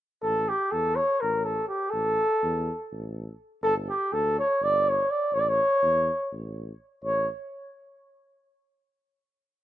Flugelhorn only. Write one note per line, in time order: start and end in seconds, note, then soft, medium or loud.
0.22 0.50 A4 medium
0.49 0.73 G4 medium
0.71 0.97 A4 medium
0.96 1.22 C#5 loud
1.21 1.45 A#4 medium
1.44 1.68 A4 medium
1.68 1.92 G4 medium
1.90 2.91 A4 medium
3.63 3.75 A4 loud
3.89 4.14 G4 medium
4.12 4.38 A4 medium
4.39 4.65 C#5 medium
4.63 4.90 D5 medium
4.89 5.12 C#5 medium
5.10 5.35 D5 medium
5.34 5.41 C#5 loud
5.40 5.50 D5 medium
5.48 6.32 C#5 loud
7.04 7.28 C#5 medium